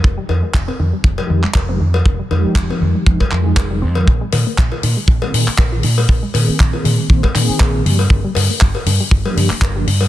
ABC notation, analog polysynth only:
X:1
M:4/4
L:1/16
Q:"Swing 16ths" 1/4=119
K:Fdor
V:1 name="Analog polysynth"
z8 z [F,A,EG] [F,A,EG] z2 [F,A,EG] z2 | z2 [F,A,EG]6 [F,A,EB] z [F,A,EA]3 [F,A,EA] z [F,A,EB] | z8 z [E,B,CA] [E,B,CA] z2 [E,B,CA] z2 | z2 [E,B,CA]6 [E,B,Cc] z [E,B,CA]4 [F,B,DG] z |
z8 z [F,B,DG] [F,B,DG] z2 [F,B,DG] z2 |]